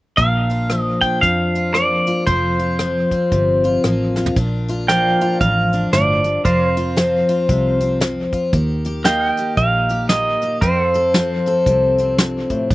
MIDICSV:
0, 0, Header, 1, 7, 480
1, 0, Start_track
1, 0, Key_signature, -2, "major"
1, 0, Tempo, 521739
1, 166, Time_signature, 4, 2, 24, 8
1, 11728, End_track
2, 0, Start_track
2, 0, Title_t, "Clean electric guitar"
2, 0, Program_c, 0, 27
2, 158, Note_on_c, 0, 77, 78
2, 747, Note_off_c, 0, 77, 0
2, 747, Note_on_c, 0, 75, 78
2, 930, Note_off_c, 0, 75, 0
2, 933, Note_on_c, 0, 79, 82
2, 1113, Note_off_c, 0, 79, 0
2, 1117, Note_on_c, 0, 77, 76
2, 1600, Note_on_c, 0, 74, 73
2, 1619, Note_off_c, 0, 77, 0
2, 2081, Note_off_c, 0, 74, 0
2, 2084, Note_on_c, 0, 72, 75
2, 3494, Note_off_c, 0, 72, 0
2, 11728, End_track
3, 0, Start_track
3, 0, Title_t, "Pedal steel guitar"
3, 0, Program_c, 1, 26
3, 4493, Note_on_c, 1, 79, 101
3, 4971, Note_off_c, 1, 79, 0
3, 4975, Note_on_c, 1, 77, 87
3, 5455, Note_on_c, 1, 74, 82
3, 5469, Note_off_c, 1, 77, 0
3, 5934, Note_on_c, 1, 72, 63
3, 5949, Note_off_c, 1, 74, 0
3, 7336, Note_off_c, 1, 72, 0
3, 8331, Note_on_c, 1, 79, 92
3, 8804, Note_off_c, 1, 79, 0
3, 8808, Note_on_c, 1, 77, 87
3, 9284, Note_on_c, 1, 75, 81
3, 9303, Note_off_c, 1, 77, 0
3, 9765, Note_on_c, 1, 72, 66
3, 9781, Note_off_c, 1, 75, 0
3, 11168, Note_off_c, 1, 72, 0
3, 11728, End_track
4, 0, Start_track
4, 0, Title_t, "Pedal steel guitar"
4, 0, Program_c, 2, 26
4, 4496, Note_on_c, 2, 70, 67
4, 4509, Note_on_c, 2, 74, 59
4, 4516, Note_on_c, 2, 77, 60
4, 5921, Note_off_c, 2, 70, 0
4, 5928, Note_off_c, 2, 74, 0
4, 5930, Note_off_c, 2, 77, 0
4, 5931, Note_on_c, 2, 70, 68
4, 5939, Note_on_c, 2, 74, 67
4, 5947, Note_on_c, 2, 77, 68
4, 6169, Note_off_c, 2, 74, 0
4, 6169, Note_on_c, 2, 72, 67
4, 7832, Note_off_c, 2, 70, 0
4, 7836, Note_off_c, 2, 72, 0
4, 7840, Note_off_c, 2, 77, 0
4, 8320, Note_on_c, 2, 70, 65
4, 8331, Note_on_c, 2, 75, 68
4, 8339, Note_on_c, 2, 77, 64
4, 8569, Note_off_c, 2, 77, 0
4, 8569, Note_on_c, 2, 79, 64
4, 9750, Note_off_c, 2, 70, 0
4, 9755, Note_off_c, 2, 75, 0
4, 9759, Note_off_c, 2, 79, 0
4, 9764, Note_on_c, 2, 70, 59
4, 9774, Note_on_c, 2, 72, 61
4, 9782, Note_on_c, 2, 79, 66
4, 9948, Note_off_c, 2, 70, 0
4, 9948, Note_on_c, 2, 69, 59
4, 10012, Note_off_c, 2, 79, 0
4, 10012, Note_on_c, 2, 77, 66
4, 11665, Note_off_c, 2, 69, 0
4, 11670, Note_off_c, 2, 72, 0
4, 11674, Note_off_c, 2, 77, 0
4, 11728, End_track
5, 0, Start_track
5, 0, Title_t, "Steel-string acoustic guitar"
5, 0, Program_c, 3, 25
5, 164, Note_on_c, 3, 46, 71
5, 171, Note_on_c, 3, 62, 49
5, 468, Note_on_c, 3, 65, 56
5, 655, Note_on_c, 3, 53, 48
5, 939, Note_off_c, 3, 62, 0
5, 950, Note_on_c, 3, 62, 53
5, 1128, Note_off_c, 3, 46, 0
5, 1133, Note_on_c, 3, 41, 59
5, 1429, Note_off_c, 3, 65, 0
5, 1433, Note_on_c, 3, 65, 60
5, 1602, Note_off_c, 3, 53, 0
5, 1606, Note_on_c, 3, 53, 55
5, 1614, Note_on_c, 3, 58, 51
5, 1907, Note_off_c, 3, 65, 0
5, 1911, Note_on_c, 3, 65, 59
5, 2074, Note_off_c, 3, 62, 0
5, 2075, Note_off_c, 3, 41, 0
5, 2086, Note_on_c, 3, 41, 67
5, 2095, Note_on_c, 3, 60, 57
5, 2123, Note_off_c, 3, 58, 0
5, 2376, Note_off_c, 3, 65, 0
5, 2387, Note_on_c, 3, 65, 61
5, 2566, Note_off_c, 3, 53, 0
5, 2570, Note_on_c, 3, 53, 53
5, 2861, Note_off_c, 3, 60, 0
5, 2872, Note_on_c, 3, 60, 54
5, 3061, Note_on_c, 3, 48, 62
5, 3345, Note_off_c, 3, 65, 0
5, 3356, Note_on_c, 3, 65, 59
5, 3533, Note_off_c, 3, 53, 0
5, 3538, Note_off_c, 3, 48, 0
5, 3542, Note_on_c, 3, 53, 62
5, 3549, Note_on_c, 3, 58, 55
5, 3825, Note_off_c, 3, 65, 0
5, 3836, Note_on_c, 3, 65, 53
5, 3996, Note_off_c, 3, 53, 0
5, 3999, Note_off_c, 3, 58, 0
5, 4012, Note_off_c, 3, 41, 0
5, 4016, Note_on_c, 3, 46, 63
5, 4018, Note_off_c, 3, 60, 0
5, 4024, Note_on_c, 3, 62, 60
5, 4307, Note_off_c, 3, 65, 0
5, 4318, Note_on_c, 3, 65, 67
5, 4499, Note_off_c, 3, 62, 0
5, 4503, Note_on_c, 3, 53, 54
5, 4509, Note_on_c, 3, 62, 57
5, 4794, Note_off_c, 3, 65, 0
5, 4798, Note_on_c, 3, 65, 65
5, 4976, Note_off_c, 3, 46, 0
5, 4981, Note_on_c, 3, 41, 64
5, 5267, Note_off_c, 3, 62, 0
5, 5278, Note_on_c, 3, 62, 55
5, 5452, Note_off_c, 3, 41, 0
5, 5455, Note_on_c, 3, 45, 62
5, 5740, Note_off_c, 3, 45, 0
5, 5744, Note_on_c, 3, 43, 59
5, 5916, Note_off_c, 3, 53, 0
5, 5917, Note_off_c, 3, 62, 0
5, 5929, Note_off_c, 3, 43, 0
5, 5933, Note_on_c, 3, 41, 69
5, 5938, Note_on_c, 3, 60, 64
5, 6217, Note_off_c, 3, 65, 0
5, 6228, Note_on_c, 3, 65, 66
5, 6404, Note_off_c, 3, 60, 0
5, 6408, Note_on_c, 3, 53, 52
5, 6416, Note_on_c, 3, 60, 52
5, 6695, Note_off_c, 3, 65, 0
5, 6706, Note_on_c, 3, 65, 67
5, 6891, Note_on_c, 3, 48, 64
5, 7171, Note_off_c, 3, 60, 0
5, 7182, Note_on_c, 3, 60, 58
5, 7354, Note_off_c, 3, 53, 0
5, 7365, Note_on_c, 3, 53, 54
5, 7372, Note_off_c, 3, 48, 0
5, 7658, Note_off_c, 3, 65, 0
5, 7669, Note_on_c, 3, 65, 58
5, 7826, Note_off_c, 3, 53, 0
5, 7849, Note_on_c, 3, 51, 72
5, 7850, Note_off_c, 3, 65, 0
5, 7851, Note_off_c, 3, 60, 0
5, 7852, Note_off_c, 3, 41, 0
5, 7854, Note_on_c, 3, 67, 64
5, 8139, Note_off_c, 3, 67, 0
5, 8150, Note_on_c, 3, 67, 67
5, 8330, Note_off_c, 3, 67, 0
5, 8334, Note_on_c, 3, 58, 58
5, 8341, Note_on_c, 3, 67, 54
5, 8625, Note_off_c, 3, 67, 0
5, 8636, Note_on_c, 3, 67, 67
5, 8808, Note_on_c, 3, 46, 62
5, 9102, Note_off_c, 3, 67, 0
5, 9113, Note_on_c, 3, 67, 64
5, 9282, Note_off_c, 3, 58, 0
5, 9293, Note_on_c, 3, 58, 55
5, 9582, Note_off_c, 3, 67, 0
5, 9593, Note_on_c, 3, 67, 60
5, 9749, Note_off_c, 3, 58, 0
5, 9753, Note_off_c, 3, 67, 0
5, 9768, Note_off_c, 3, 46, 0
5, 9768, Note_off_c, 3, 51, 0
5, 9777, Note_on_c, 3, 41, 64
5, 9784, Note_on_c, 3, 60, 58
5, 10078, Note_on_c, 3, 69, 64
5, 10250, Note_off_c, 3, 60, 0
5, 10254, Note_on_c, 3, 53, 55
5, 10261, Note_on_c, 3, 60, 54
5, 10544, Note_off_c, 3, 69, 0
5, 10556, Note_on_c, 3, 69, 60
5, 10738, Note_on_c, 3, 48, 64
5, 11026, Note_off_c, 3, 60, 0
5, 11036, Note_on_c, 3, 60, 54
5, 11207, Note_off_c, 3, 41, 0
5, 11211, Note_on_c, 3, 43, 54
5, 11496, Note_off_c, 3, 43, 0
5, 11500, Note_on_c, 3, 45, 58
5, 11667, Note_off_c, 3, 53, 0
5, 11670, Note_off_c, 3, 48, 0
5, 11672, Note_off_c, 3, 69, 0
5, 11687, Note_off_c, 3, 45, 0
5, 11690, Note_on_c, 3, 46, 71
5, 11693, Note_off_c, 3, 60, 0
5, 11696, Note_on_c, 3, 62, 65
5, 11728, Note_off_c, 3, 46, 0
5, 11728, Note_off_c, 3, 62, 0
5, 11728, End_track
6, 0, Start_track
6, 0, Title_t, "Fingered electric bass"
6, 0, Program_c, 4, 33
6, 166, Note_on_c, 4, 34, 68
6, 883, Note_off_c, 4, 34, 0
6, 1131, Note_on_c, 4, 41, 71
6, 1846, Note_off_c, 4, 41, 0
6, 2090, Note_on_c, 4, 29, 84
6, 2806, Note_off_c, 4, 29, 0
6, 3054, Note_on_c, 4, 31, 81
6, 3462, Note_off_c, 4, 31, 0
6, 3539, Note_on_c, 4, 33, 62
6, 3945, Note_off_c, 4, 33, 0
6, 4016, Note_on_c, 4, 34, 79
6, 4730, Note_off_c, 4, 34, 0
6, 4975, Note_on_c, 4, 33, 78
6, 5383, Note_off_c, 4, 33, 0
6, 5456, Note_on_c, 4, 31, 69
6, 5863, Note_off_c, 4, 31, 0
6, 5935, Note_on_c, 4, 29, 82
6, 6648, Note_off_c, 4, 29, 0
6, 6893, Note_on_c, 4, 36, 81
6, 7607, Note_off_c, 4, 36, 0
6, 7847, Note_on_c, 4, 39, 85
6, 8563, Note_off_c, 4, 39, 0
6, 8807, Note_on_c, 4, 34, 77
6, 9522, Note_off_c, 4, 34, 0
6, 9769, Note_on_c, 4, 41, 79
6, 10483, Note_off_c, 4, 41, 0
6, 10732, Note_on_c, 4, 36, 82
6, 11444, Note_off_c, 4, 36, 0
6, 11691, Note_on_c, 4, 34, 80
6, 11728, Note_off_c, 4, 34, 0
6, 11728, End_track
7, 0, Start_track
7, 0, Title_t, "Drums"
7, 163, Note_on_c, 9, 42, 76
7, 166, Note_on_c, 9, 36, 96
7, 255, Note_off_c, 9, 42, 0
7, 258, Note_off_c, 9, 36, 0
7, 457, Note_on_c, 9, 42, 59
7, 549, Note_off_c, 9, 42, 0
7, 641, Note_on_c, 9, 37, 87
7, 641, Note_on_c, 9, 42, 74
7, 733, Note_off_c, 9, 37, 0
7, 733, Note_off_c, 9, 42, 0
7, 940, Note_on_c, 9, 36, 63
7, 940, Note_on_c, 9, 42, 50
7, 1032, Note_off_c, 9, 36, 0
7, 1032, Note_off_c, 9, 42, 0
7, 1129, Note_on_c, 9, 36, 88
7, 1130, Note_on_c, 9, 42, 70
7, 1221, Note_off_c, 9, 36, 0
7, 1222, Note_off_c, 9, 42, 0
7, 1426, Note_on_c, 9, 42, 54
7, 1518, Note_off_c, 9, 42, 0
7, 1608, Note_on_c, 9, 37, 93
7, 1608, Note_on_c, 9, 42, 74
7, 1700, Note_off_c, 9, 37, 0
7, 1700, Note_off_c, 9, 42, 0
7, 1899, Note_on_c, 9, 42, 51
7, 1991, Note_off_c, 9, 42, 0
7, 2089, Note_on_c, 9, 42, 76
7, 2091, Note_on_c, 9, 36, 102
7, 2181, Note_off_c, 9, 42, 0
7, 2183, Note_off_c, 9, 36, 0
7, 2383, Note_on_c, 9, 42, 52
7, 2475, Note_off_c, 9, 42, 0
7, 2568, Note_on_c, 9, 37, 95
7, 2568, Note_on_c, 9, 42, 73
7, 2660, Note_off_c, 9, 37, 0
7, 2660, Note_off_c, 9, 42, 0
7, 2864, Note_on_c, 9, 42, 52
7, 2865, Note_on_c, 9, 36, 65
7, 2956, Note_off_c, 9, 42, 0
7, 2957, Note_off_c, 9, 36, 0
7, 3049, Note_on_c, 9, 42, 72
7, 3053, Note_on_c, 9, 36, 90
7, 3141, Note_off_c, 9, 42, 0
7, 3145, Note_off_c, 9, 36, 0
7, 3345, Note_on_c, 9, 42, 48
7, 3437, Note_off_c, 9, 42, 0
7, 3533, Note_on_c, 9, 37, 98
7, 3533, Note_on_c, 9, 42, 71
7, 3625, Note_off_c, 9, 37, 0
7, 3625, Note_off_c, 9, 42, 0
7, 3826, Note_on_c, 9, 38, 45
7, 3918, Note_off_c, 9, 38, 0
7, 3919, Note_on_c, 9, 43, 72
7, 4011, Note_off_c, 9, 43, 0
7, 4014, Note_on_c, 9, 42, 85
7, 4015, Note_on_c, 9, 36, 112
7, 4106, Note_off_c, 9, 42, 0
7, 4107, Note_off_c, 9, 36, 0
7, 4307, Note_on_c, 9, 42, 62
7, 4399, Note_off_c, 9, 42, 0
7, 4497, Note_on_c, 9, 38, 85
7, 4497, Note_on_c, 9, 42, 82
7, 4589, Note_off_c, 9, 38, 0
7, 4589, Note_off_c, 9, 42, 0
7, 4791, Note_on_c, 9, 42, 52
7, 4883, Note_off_c, 9, 42, 0
7, 4975, Note_on_c, 9, 36, 102
7, 4975, Note_on_c, 9, 42, 80
7, 5067, Note_off_c, 9, 36, 0
7, 5067, Note_off_c, 9, 42, 0
7, 5268, Note_on_c, 9, 42, 58
7, 5360, Note_off_c, 9, 42, 0
7, 5455, Note_on_c, 9, 38, 95
7, 5455, Note_on_c, 9, 42, 78
7, 5547, Note_off_c, 9, 38, 0
7, 5547, Note_off_c, 9, 42, 0
7, 5747, Note_on_c, 9, 42, 55
7, 5839, Note_off_c, 9, 42, 0
7, 5935, Note_on_c, 9, 36, 103
7, 5936, Note_on_c, 9, 42, 87
7, 6027, Note_off_c, 9, 36, 0
7, 6028, Note_off_c, 9, 42, 0
7, 6228, Note_on_c, 9, 42, 59
7, 6320, Note_off_c, 9, 42, 0
7, 6414, Note_on_c, 9, 38, 101
7, 6414, Note_on_c, 9, 42, 76
7, 6506, Note_off_c, 9, 38, 0
7, 6506, Note_off_c, 9, 42, 0
7, 6705, Note_on_c, 9, 42, 52
7, 6797, Note_off_c, 9, 42, 0
7, 6891, Note_on_c, 9, 36, 98
7, 6892, Note_on_c, 9, 42, 74
7, 6983, Note_off_c, 9, 36, 0
7, 6984, Note_off_c, 9, 42, 0
7, 7183, Note_on_c, 9, 42, 54
7, 7275, Note_off_c, 9, 42, 0
7, 7371, Note_on_c, 9, 38, 101
7, 7371, Note_on_c, 9, 42, 79
7, 7463, Note_off_c, 9, 38, 0
7, 7463, Note_off_c, 9, 42, 0
7, 7660, Note_on_c, 9, 42, 56
7, 7661, Note_on_c, 9, 36, 72
7, 7752, Note_off_c, 9, 42, 0
7, 7753, Note_off_c, 9, 36, 0
7, 7844, Note_on_c, 9, 42, 76
7, 7848, Note_on_c, 9, 36, 109
7, 7936, Note_off_c, 9, 42, 0
7, 7940, Note_off_c, 9, 36, 0
7, 8138, Note_on_c, 9, 42, 60
7, 8230, Note_off_c, 9, 42, 0
7, 8324, Note_on_c, 9, 38, 100
7, 8324, Note_on_c, 9, 42, 74
7, 8416, Note_off_c, 9, 38, 0
7, 8416, Note_off_c, 9, 42, 0
7, 8619, Note_on_c, 9, 42, 58
7, 8711, Note_off_c, 9, 42, 0
7, 8804, Note_on_c, 9, 42, 74
7, 8807, Note_on_c, 9, 36, 99
7, 8896, Note_off_c, 9, 42, 0
7, 8899, Note_off_c, 9, 36, 0
7, 9097, Note_on_c, 9, 42, 54
7, 9189, Note_off_c, 9, 42, 0
7, 9284, Note_on_c, 9, 38, 103
7, 9284, Note_on_c, 9, 42, 85
7, 9376, Note_off_c, 9, 38, 0
7, 9376, Note_off_c, 9, 42, 0
7, 9581, Note_on_c, 9, 42, 58
7, 9673, Note_off_c, 9, 42, 0
7, 9766, Note_on_c, 9, 42, 88
7, 9769, Note_on_c, 9, 36, 113
7, 9858, Note_off_c, 9, 42, 0
7, 9861, Note_off_c, 9, 36, 0
7, 10063, Note_on_c, 9, 42, 57
7, 10155, Note_off_c, 9, 42, 0
7, 10250, Note_on_c, 9, 38, 91
7, 10250, Note_on_c, 9, 42, 75
7, 10342, Note_off_c, 9, 38, 0
7, 10342, Note_off_c, 9, 42, 0
7, 10543, Note_on_c, 9, 42, 52
7, 10635, Note_off_c, 9, 42, 0
7, 10729, Note_on_c, 9, 42, 73
7, 10730, Note_on_c, 9, 36, 92
7, 10821, Note_off_c, 9, 42, 0
7, 10822, Note_off_c, 9, 36, 0
7, 11022, Note_on_c, 9, 42, 55
7, 11114, Note_off_c, 9, 42, 0
7, 11208, Note_on_c, 9, 38, 95
7, 11208, Note_on_c, 9, 42, 77
7, 11300, Note_off_c, 9, 38, 0
7, 11300, Note_off_c, 9, 42, 0
7, 11502, Note_on_c, 9, 36, 64
7, 11502, Note_on_c, 9, 42, 47
7, 11594, Note_off_c, 9, 36, 0
7, 11594, Note_off_c, 9, 42, 0
7, 11687, Note_on_c, 9, 42, 73
7, 11689, Note_on_c, 9, 36, 109
7, 11728, Note_off_c, 9, 36, 0
7, 11728, Note_off_c, 9, 42, 0
7, 11728, End_track
0, 0, End_of_file